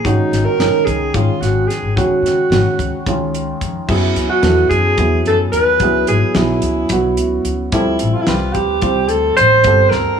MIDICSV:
0, 0, Header, 1, 6, 480
1, 0, Start_track
1, 0, Tempo, 548948
1, 38, Time_signature, 7, 3, 24, 8
1, 8916, End_track
2, 0, Start_track
2, 0, Title_t, "Alto saxophone"
2, 0, Program_c, 0, 65
2, 52, Note_on_c, 0, 63, 79
2, 389, Note_on_c, 0, 70, 80
2, 403, Note_off_c, 0, 63, 0
2, 744, Note_on_c, 0, 68, 88
2, 757, Note_off_c, 0, 70, 0
2, 1006, Note_on_c, 0, 65, 77
2, 1019, Note_off_c, 0, 68, 0
2, 1236, Note_on_c, 0, 66, 71
2, 1250, Note_off_c, 0, 65, 0
2, 1463, Note_on_c, 0, 68, 69
2, 1477, Note_off_c, 0, 66, 0
2, 1708, Note_off_c, 0, 68, 0
2, 1714, Note_on_c, 0, 66, 76
2, 2881, Note_off_c, 0, 66, 0
2, 3397, Note_on_c, 0, 64, 74
2, 3732, Note_off_c, 0, 64, 0
2, 3756, Note_on_c, 0, 66, 85
2, 4092, Note_off_c, 0, 66, 0
2, 4105, Note_on_c, 0, 68, 104
2, 4557, Note_off_c, 0, 68, 0
2, 4611, Note_on_c, 0, 69, 84
2, 4716, Note_off_c, 0, 69, 0
2, 4826, Note_on_c, 0, 71, 105
2, 5278, Note_off_c, 0, 71, 0
2, 5319, Note_on_c, 0, 68, 86
2, 5569, Note_on_c, 0, 64, 70
2, 5582, Note_off_c, 0, 68, 0
2, 6523, Note_off_c, 0, 64, 0
2, 6763, Note_on_c, 0, 64, 84
2, 7117, Note_on_c, 0, 65, 77
2, 7131, Note_off_c, 0, 64, 0
2, 7176, Note_on_c, 0, 64, 71
2, 7189, Note_off_c, 0, 65, 0
2, 7239, Note_on_c, 0, 65, 79
2, 7252, Note_off_c, 0, 64, 0
2, 7461, Note_on_c, 0, 67, 97
2, 7474, Note_off_c, 0, 65, 0
2, 7946, Note_on_c, 0, 69, 90
2, 7959, Note_off_c, 0, 67, 0
2, 8183, Note_off_c, 0, 69, 0
2, 8188, Note_on_c, 0, 72, 105
2, 8653, Note_on_c, 0, 70, 89
2, 8666, Note_off_c, 0, 72, 0
2, 8916, Note_off_c, 0, 70, 0
2, 8916, End_track
3, 0, Start_track
3, 0, Title_t, "Grand piano"
3, 0, Program_c, 1, 0
3, 42, Note_on_c, 1, 51, 60
3, 46, Note_on_c, 1, 56, 58
3, 52, Note_on_c, 1, 61, 57
3, 52, Note_on_c, 1, 66, 73
3, 485, Note_off_c, 1, 51, 0
3, 487, Note_off_c, 1, 56, 0
3, 490, Note_off_c, 1, 61, 0
3, 490, Note_off_c, 1, 66, 0
3, 519, Note_on_c, 1, 51, 55
3, 522, Note_on_c, 1, 56, 49
3, 526, Note_on_c, 1, 63, 70
3, 530, Note_on_c, 1, 61, 52
3, 964, Note_off_c, 1, 51, 0
3, 965, Note_off_c, 1, 56, 0
3, 967, Note_off_c, 1, 63, 0
3, 969, Note_off_c, 1, 61, 0
3, 1003, Note_on_c, 1, 51, 58
3, 1004, Note_on_c, 1, 56, 50
3, 1008, Note_on_c, 1, 61, 53
3, 1012, Note_on_c, 1, 68, 62
3, 1704, Note_off_c, 1, 51, 0
3, 1710, Note_off_c, 1, 56, 0
3, 1716, Note_off_c, 1, 61, 0
3, 1717, Note_on_c, 1, 51, 66
3, 1723, Note_on_c, 1, 56, 57
3, 1725, Note_off_c, 1, 68, 0
3, 1728, Note_on_c, 1, 66, 68
3, 1729, Note_on_c, 1, 61, 66
3, 2163, Note_off_c, 1, 51, 0
3, 2166, Note_off_c, 1, 56, 0
3, 2169, Note_off_c, 1, 61, 0
3, 2169, Note_off_c, 1, 66, 0
3, 2199, Note_on_c, 1, 56, 50
3, 2200, Note_on_c, 1, 51, 58
3, 2204, Note_on_c, 1, 66, 67
3, 2205, Note_on_c, 1, 61, 49
3, 2644, Note_off_c, 1, 56, 0
3, 2645, Note_off_c, 1, 51, 0
3, 2647, Note_off_c, 1, 61, 0
3, 2647, Note_off_c, 1, 66, 0
3, 2684, Note_on_c, 1, 51, 70
3, 2684, Note_on_c, 1, 56, 64
3, 2689, Note_on_c, 1, 61, 61
3, 2696, Note_on_c, 1, 65, 73
3, 3399, Note_on_c, 1, 54, 65
3, 3402, Note_off_c, 1, 51, 0
3, 3402, Note_off_c, 1, 56, 0
3, 3404, Note_off_c, 1, 61, 0
3, 3405, Note_on_c, 1, 59, 59
3, 3407, Note_off_c, 1, 65, 0
3, 3407, Note_on_c, 1, 64, 61
3, 3408, Note_on_c, 1, 68, 75
3, 3844, Note_off_c, 1, 54, 0
3, 3847, Note_off_c, 1, 59, 0
3, 3848, Note_off_c, 1, 64, 0
3, 3848, Note_off_c, 1, 68, 0
3, 3880, Note_on_c, 1, 54, 63
3, 3882, Note_on_c, 1, 59, 54
3, 3885, Note_on_c, 1, 64, 57
3, 3885, Note_on_c, 1, 69, 70
3, 4324, Note_off_c, 1, 54, 0
3, 4325, Note_off_c, 1, 59, 0
3, 4327, Note_off_c, 1, 64, 0
3, 4327, Note_off_c, 1, 69, 0
3, 4360, Note_on_c, 1, 54, 64
3, 4363, Note_on_c, 1, 59, 55
3, 4363, Note_on_c, 1, 64, 59
3, 4368, Note_on_c, 1, 68, 61
3, 5076, Note_off_c, 1, 54, 0
3, 5080, Note_off_c, 1, 59, 0
3, 5080, Note_off_c, 1, 64, 0
3, 5083, Note_off_c, 1, 68, 0
3, 5089, Note_on_c, 1, 54, 68
3, 5093, Note_on_c, 1, 59, 64
3, 5097, Note_on_c, 1, 64, 66
3, 5100, Note_on_c, 1, 68, 78
3, 5528, Note_off_c, 1, 54, 0
3, 5530, Note_off_c, 1, 59, 0
3, 5532, Note_off_c, 1, 64, 0
3, 5534, Note_off_c, 1, 68, 0
3, 5562, Note_on_c, 1, 54, 59
3, 5564, Note_on_c, 1, 59, 50
3, 5568, Note_on_c, 1, 64, 57
3, 5573, Note_on_c, 1, 68, 66
3, 6005, Note_off_c, 1, 54, 0
3, 6006, Note_off_c, 1, 59, 0
3, 6008, Note_off_c, 1, 64, 0
3, 6010, Note_off_c, 1, 68, 0
3, 6048, Note_on_c, 1, 54, 60
3, 6050, Note_on_c, 1, 59, 57
3, 6052, Note_on_c, 1, 64, 50
3, 6056, Note_on_c, 1, 66, 70
3, 6756, Note_on_c, 1, 55, 75
3, 6762, Note_off_c, 1, 54, 0
3, 6763, Note_off_c, 1, 59, 0
3, 6763, Note_on_c, 1, 60, 65
3, 6764, Note_off_c, 1, 64, 0
3, 6765, Note_on_c, 1, 53, 70
3, 6766, Note_off_c, 1, 66, 0
3, 6767, Note_on_c, 1, 69, 72
3, 7201, Note_off_c, 1, 55, 0
3, 7204, Note_off_c, 1, 60, 0
3, 7206, Note_off_c, 1, 53, 0
3, 7206, Note_off_c, 1, 69, 0
3, 7234, Note_on_c, 1, 55, 65
3, 7234, Note_on_c, 1, 60, 52
3, 7237, Note_on_c, 1, 71, 67
3, 7238, Note_on_c, 1, 65, 59
3, 7680, Note_off_c, 1, 55, 0
3, 7680, Note_off_c, 1, 60, 0
3, 7681, Note_off_c, 1, 71, 0
3, 7682, Note_off_c, 1, 65, 0
3, 7713, Note_on_c, 1, 55, 61
3, 7718, Note_on_c, 1, 60, 60
3, 7719, Note_on_c, 1, 65, 58
3, 7722, Note_on_c, 1, 72, 68
3, 8432, Note_off_c, 1, 55, 0
3, 8432, Note_off_c, 1, 60, 0
3, 8436, Note_off_c, 1, 65, 0
3, 8438, Note_off_c, 1, 72, 0
3, 8445, Note_on_c, 1, 55, 70
3, 8445, Note_on_c, 1, 60, 67
3, 8450, Note_on_c, 1, 65, 57
3, 8456, Note_on_c, 1, 69, 75
3, 8884, Note_off_c, 1, 55, 0
3, 8884, Note_off_c, 1, 60, 0
3, 8887, Note_off_c, 1, 65, 0
3, 8890, Note_off_c, 1, 69, 0
3, 8916, End_track
4, 0, Start_track
4, 0, Title_t, "Upright bass"
4, 0, Program_c, 2, 32
4, 41, Note_on_c, 2, 32, 84
4, 138, Note_off_c, 2, 32, 0
4, 274, Note_on_c, 2, 32, 79
4, 374, Note_off_c, 2, 32, 0
4, 505, Note_on_c, 2, 30, 83
4, 608, Note_off_c, 2, 30, 0
4, 762, Note_on_c, 2, 37, 81
4, 957, Note_off_c, 2, 37, 0
4, 997, Note_on_c, 2, 32, 80
4, 1096, Note_off_c, 2, 32, 0
4, 1231, Note_on_c, 2, 32, 84
4, 1431, Note_off_c, 2, 32, 0
4, 1594, Note_on_c, 2, 32, 70
4, 1694, Note_off_c, 2, 32, 0
4, 1723, Note_on_c, 2, 37, 77
4, 1820, Note_off_c, 2, 37, 0
4, 1944, Note_on_c, 2, 49, 72
4, 2049, Note_off_c, 2, 49, 0
4, 2185, Note_on_c, 2, 32, 92
4, 2289, Note_off_c, 2, 32, 0
4, 2435, Note_on_c, 2, 37, 85
4, 2535, Note_off_c, 2, 37, 0
4, 2674, Note_on_c, 2, 37, 75
4, 3070, Note_off_c, 2, 37, 0
4, 3158, Note_on_c, 2, 41, 80
4, 3257, Note_off_c, 2, 41, 0
4, 3398, Note_on_c, 2, 42, 85
4, 3596, Note_off_c, 2, 42, 0
4, 3628, Note_on_c, 2, 37, 82
4, 3731, Note_off_c, 2, 37, 0
4, 3868, Note_on_c, 2, 40, 99
4, 4070, Note_off_c, 2, 40, 0
4, 4114, Note_on_c, 2, 42, 84
4, 4313, Note_off_c, 2, 42, 0
4, 4354, Note_on_c, 2, 40, 83
4, 4593, Note_off_c, 2, 40, 0
4, 4593, Note_on_c, 2, 42, 82
4, 4793, Note_off_c, 2, 42, 0
4, 4828, Note_on_c, 2, 39, 87
4, 5029, Note_off_c, 2, 39, 0
4, 5068, Note_on_c, 2, 37, 97
4, 5269, Note_off_c, 2, 37, 0
4, 5315, Note_on_c, 2, 32, 74
4, 5415, Note_off_c, 2, 32, 0
4, 5551, Note_on_c, 2, 35, 91
4, 5750, Note_off_c, 2, 35, 0
4, 5791, Note_on_c, 2, 37, 85
4, 5990, Note_off_c, 2, 37, 0
4, 6028, Note_on_c, 2, 35, 92
4, 6279, Note_off_c, 2, 35, 0
4, 6279, Note_on_c, 2, 37, 89
4, 6475, Note_off_c, 2, 37, 0
4, 6511, Note_on_c, 2, 37, 86
4, 6710, Note_off_c, 2, 37, 0
4, 6753, Note_on_c, 2, 38, 86
4, 6951, Note_off_c, 2, 38, 0
4, 7002, Note_on_c, 2, 33, 77
4, 7098, Note_off_c, 2, 33, 0
4, 7239, Note_on_c, 2, 36, 96
4, 7434, Note_off_c, 2, 36, 0
4, 7470, Note_on_c, 2, 38, 86
4, 7670, Note_off_c, 2, 38, 0
4, 7711, Note_on_c, 2, 36, 96
4, 7953, Note_off_c, 2, 36, 0
4, 7953, Note_on_c, 2, 38, 84
4, 8151, Note_off_c, 2, 38, 0
4, 8199, Note_on_c, 2, 33, 92
4, 8394, Note_off_c, 2, 33, 0
4, 8432, Note_on_c, 2, 31, 87
4, 8630, Note_off_c, 2, 31, 0
4, 8678, Note_on_c, 2, 38, 84
4, 8775, Note_off_c, 2, 38, 0
4, 8916, End_track
5, 0, Start_track
5, 0, Title_t, "Muted upright bass strokes"
5, 631, Note_on_c, 9, 29, 32
5, 719, Note_off_c, 9, 29, 0
5, 1840, Note_on_c, 9, 29, 31
5, 1927, Note_off_c, 9, 29, 0
5, 8916, End_track
6, 0, Start_track
6, 0, Title_t, "Drums"
6, 42, Note_on_c, 9, 36, 92
6, 50, Note_on_c, 9, 42, 80
6, 130, Note_off_c, 9, 36, 0
6, 138, Note_off_c, 9, 42, 0
6, 290, Note_on_c, 9, 42, 57
6, 291, Note_on_c, 9, 38, 34
6, 378, Note_off_c, 9, 42, 0
6, 379, Note_off_c, 9, 38, 0
6, 525, Note_on_c, 9, 42, 68
6, 526, Note_on_c, 9, 38, 92
6, 612, Note_off_c, 9, 42, 0
6, 613, Note_off_c, 9, 38, 0
6, 760, Note_on_c, 9, 36, 60
6, 764, Note_on_c, 9, 42, 51
6, 848, Note_off_c, 9, 36, 0
6, 851, Note_off_c, 9, 42, 0
6, 999, Note_on_c, 9, 42, 71
6, 1000, Note_on_c, 9, 36, 95
6, 1087, Note_off_c, 9, 36, 0
6, 1087, Note_off_c, 9, 42, 0
6, 1247, Note_on_c, 9, 42, 54
6, 1248, Note_on_c, 9, 38, 31
6, 1334, Note_off_c, 9, 42, 0
6, 1335, Note_off_c, 9, 38, 0
6, 1489, Note_on_c, 9, 42, 53
6, 1490, Note_on_c, 9, 38, 33
6, 1577, Note_off_c, 9, 42, 0
6, 1578, Note_off_c, 9, 38, 0
6, 1724, Note_on_c, 9, 36, 95
6, 1733, Note_on_c, 9, 42, 73
6, 1811, Note_off_c, 9, 36, 0
6, 1821, Note_off_c, 9, 42, 0
6, 1975, Note_on_c, 9, 42, 61
6, 1976, Note_on_c, 9, 38, 32
6, 2062, Note_off_c, 9, 42, 0
6, 2063, Note_off_c, 9, 38, 0
6, 2203, Note_on_c, 9, 38, 95
6, 2203, Note_on_c, 9, 42, 78
6, 2290, Note_off_c, 9, 42, 0
6, 2291, Note_off_c, 9, 38, 0
6, 2440, Note_on_c, 9, 36, 58
6, 2444, Note_on_c, 9, 42, 56
6, 2528, Note_off_c, 9, 36, 0
6, 2532, Note_off_c, 9, 42, 0
6, 2680, Note_on_c, 9, 36, 94
6, 2681, Note_on_c, 9, 42, 79
6, 2767, Note_off_c, 9, 36, 0
6, 2768, Note_off_c, 9, 42, 0
6, 2924, Note_on_c, 9, 42, 54
6, 3012, Note_off_c, 9, 42, 0
6, 3160, Note_on_c, 9, 36, 64
6, 3160, Note_on_c, 9, 42, 57
6, 3247, Note_off_c, 9, 36, 0
6, 3247, Note_off_c, 9, 42, 0
6, 3398, Note_on_c, 9, 36, 99
6, 3398, Note_on_c, 9, 49, 99
6, 3485, Note_off_c, 9, 49, 0
6, 3486, Note_off_c, 9, 36, 0
6, 3639, Note_on_c, 9, 42, 57
6, 3640, Note_on_c, 9, 38, 32
6, 3726, Note_off_c, 9, 42, 0
6, 3727, Note_off_c, 9, 38, 0
6, 3872, Note_on_c, 9, 42, 72
6, 3873, Note_on_c, 9, 38, 99
6, 3960, Note_off_c, 9, 42, 0
6, 3961, Note_off_c, 9, 38, 0
6, 4115, Note_on_c, 9, 36, 59
6, 4119, Note_on_c, 9, 42, 47
6, 4203, Note_off_c, 9, 36, 0
6, 4207, Note_off_c, 9, 42, 0
6, 4351, Note_on_c, 9, 42, 71
6, 4354, Note_on_c, 9, 36, 91
6, 4438, Note_off_c, 9, 42, 0
6, 4442, Note_off_c, 9, 36, 0
6, 4595, Note_on_c, 9, 42, 47
6, 4683, Note_off_c, 9, 42, 0
6, 4834, Note_on_c, 9, 42, 52
6, 4921, Note_off_c, 9, 42, 0
6, 5068, Note_on_c, 9, 42, 71
6, 5073, Note_on_c, 9, 36, 101
6, 5156, Note_off_c, 9, 42, 0
6, 5160, Note_off_c, 9, 36, 0
6, 5310, Note_on_c, 9, 42, 62
6, 5397, Note_off_c, 9, 42, 0
6, 5549, Note_on_c, 9, 42, 78
6, 5550, Note_on_c, 9, 38, 109
6, 5636, Note_off_c, 9, 42, 0
6, 5637, Note_off_c, 9, 38, 0
6, 5786, Note_on_c, 9, 42, 54
6, 5874, Note_off_c, 9, 42, 0
6, 6025, Note_on_c, 9, 42, 86
6, 6033, Note_on_c, 9, 36, 88
6, 6113, Note_off_c, 9, 42, 0
6, 6120, Note_off_c, 9, 36, 0
6, 6271, Note_on_c, 9, 42, 59
6, 6358, Note_off_c, 9, 42, 0
6, 6512, Note_on_c, 9, 42, 58
6, 6600, Note_off_c, 9, 42, 0
6, 6752, Note_on_c, 9, 42, 83
6, 6754, Note_on_c, 9, 36, 107
6, 6839, Note_off_c, 9, 42, 0
6, 6842, Note_off_c, 9, 36, 0
6, 6987, Note_on_c, 9, 42, 62
6, 7075, Note_off_c, 9, 42, 0
6, 7228, Note_on_c, 9, 42, 75
6, 7229, Note_on_c, 9, 38, 108
6, 7316, Note_off_c, 9, 42, 0
6, 7317, Note_off_c, 9, 38, 0
6, 7471, Note_on_c, 9, 42, 52
6, 7474, Note_on_c, 9, 36, 59
6, 7559, Note_off_c, 9, 42, 0
6, 7562, Note_off_c, 9, 36, 0
6, 7709, Note_on_c, 9, 42, 74
6, 7715, Note_on_c, 9, 36, 93
6, 7796, Note_off_c, 9, 42, 0
6, 7802, Note_off_c, 9, 36, 0
6, 7945, Note_on_c, 9, 42, 57
6, 8032, Note_off_c, 9, 42, 0
6, 8196, Note_on_c, 9, 42, 53
6, 8283, Note_off_c, 9, 42, 0
6, 8427, Note_on_c, 9, 42, 82
6, 8434, Note_on_c, 9, 36, 101
6, 8515, Note_off_c, 9, 42, 0
6, 8521, Note_off_c, 9, 36, 0
6, 8670, Note_on_c, 9, 38, 58
6, 8757, Note_off_c, 9, 38, 0
6, 8916, End_track
0, 0, End_of_file